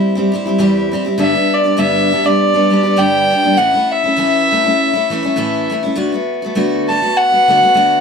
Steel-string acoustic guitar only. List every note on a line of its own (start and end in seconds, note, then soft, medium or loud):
0.00 0.18 G3 soft
0.00 0.16 C4 soft
0.00 0.14 E4 soft
0.00 0.15 G4 soft
0.15 0.31 G3 soft
0.15 0.32 C4 soft
0.15 0.33 E4 soft
0.15 0.33 G4 soft
0.32 0.46 G3 soft
0.32 0.47 C4 soft
0.32 0.44 E4 medium
0.32 0.46 G4 soft
0.45 0.58 G3 soft
0.45 0.59 C4 soft
0.45 0.59 E4 soft
0.45 0.59 G4 soft
0.58 0.93 E2 medium
0.58 0.93 E3 medium
0.58 0.90 G3 medium
0.58 0.92 C4 medium
0.58 0.94 E4 medium
0.58 0.93 G4 medium
0.92 1.05 G3 soft
0.92 1.06 C4 soft
0.92 1.03 E4 medium
0.92 1.05 G4 medium
1.05 1.17 G3 soft
1.05 1.18 C4 soft
1.05 1.18 E4 soft
1.05 1.19 G4 soft
1.18 1.35 G2 medium
1.18 1.35 D3 medium
1.18 1.36 G3 medium
1.18 1.35 B3 medium
1.18 1.34 D4 medium
1.18 1.32 G4 medium
1.34 1.66 G3 soft
1.34 1.65 B3 soft
1.34 1.64 D4 soft
1.34 1.63 G4 soft
1.64 1.77 G3 soft
1.64 1.77 B3 soft
1.64 1.78 D4 soft
1.64 1.78 G4 soft
1.77 2.12 G2 medium
1.77 2.12 D3 medium
1.77 2.09 G3 medium
1.77 2.11 B3 medium
1.77 2.12 D4 medium
1.77 2.13 G4 medium
2.10 2.25 G3 soft
2.10 2.25 B3 soft
2.10 2.24 D4 soft
2.10 2.23 G4 soft
2.24 2.56 G3 soft
2.24 2.54 B3 soft
2.24 2.53 D4 soft
2.24 2.52 G4 soft
2.54 2.69 G3 soft
2.54 2.70 B3 soft
2.54 2.71 D4 soft
2.54 2.71 G4 soft
2.70 2.84 G3 soft
2.70 2.84 B3 soft
2.70 2.83 D4 soft
2.70 2.82 G4 soft
2.83 2.96 G3 soft
2.83 2.97 B3 soft
2.83 2.97 D4 soft
2.83 2.97 G4 soft
2.96 3.31 G2 medium
2.96 3.31 D3 medium
2.96 3.29 G3 medium
2.96 3.30 B3 medium
2.96 3.32 D4 medium
2.96 3.32 G4 medium
3.30 3.44 G3 soft
3.30 3.45 B3 soft
3.30 3.44 D4 soft
3.30 3.42 G4 soft
3.44 3.57 G3 soft
3.44 3.58 B3 soft
3.44 3.58 D4 soft
3.44 3.57 G4 soft
3.57 3.74 A2 soft
3.57 3.74 E3 medium
3.57 3.75 A3 medium
3.57 3.74 C#4 medium
3.57 3.72 E4 medium
3.74 4.06 A3 soft
3.74 4.04 C#4 soft
3.74 4.03 E4 soft
4.04 4.17 A3 soft
4.04 4.17 C#4 soft
4.04 4.17 E4 soft
4.16 4.51 A2 medium
4.16 4.50 E3 medium
4.16 4.51 A3 medium
4.16 4.52 C#4 medium
4.16 4.52 E4 medium
4.51 4.64 E3 soft
4.51 4.64 A3 soft
4.51 4.65 C#4 soft
4.51 4.63 E4 soft
4.64 4.95 A3 soft
4.64 4.94 C#4 soft
4.64 4.92 E4 soft
4.93 5.10 A3 soft
4.93 5.11 C#4 soft
4.93 5.10 E4 soft
5.10 5.23 E3 soft
5.10 5.24 A3 soft
5.10 5.23 C#4 medium
5.10 5.22 E4 medium
5.23 5.36 A3 soft
5.23 5.36 C#4 soft
5.23 5.36 E4 soft
5.36 5.70 A2 medium
5.36 5.68 E3 medium
5.36 5.70 A3 medium
5.36 5.71 C#4 medium
5.36 5.71 E4 medium
5.70 5.83 E3 soft
5.70 5.83 A3 soft
5.70 5.83 C#4 soft
5.70 5.82 E4 medium
5.83 5.95 A3 soft
5.83 5.96 C#4 soft
5.83 5.96 E4 soft
5.95 6.13 D3 medium
5.95 6.13 A3 medium
5.95 6.13 B3 medium
5.95 6.11 F#4 medium
6.12 6.44 A3 soft
6.12 6.43 B3 soft
6.12 6.41 F#4 soft
6.42 6.54 A3 soft
6.42 6.55 B3 soft
6.42 6.55 F#4 soft
6.55 6.88 D3 medium
6.55 6.89 A3 medium
6.55 6.90 B3 medium
6.55 6.90 F#4 medium
6.89 7.02 D3 soft
6.89 7.02 A3 soft
6.89 7.02 B3 soft
6.89 7.01 F#4 soft
7.02 7.33 A3 soft
7.02 7.32 B3 soft
7.02 7.31 F#4 soft
7.32 7.48 A3 soft
7.32 7.49 B3 soft
7.32 7.49 F#4 soft
7.48 7.61 D3 soft
7.48 7.62 A3 soft
7.48 7.62 B3 soft
7.48 7.60 F#4 medium
7.61 7.74 A3 soft
7.61 7.75 B3 soft
7.61 7.74 F#4 soft
7.74 8.01 D3 soft
7.74 8.01 A3 medium
7.74 8.01 B3 medium
7.74 8.01 F#4 medium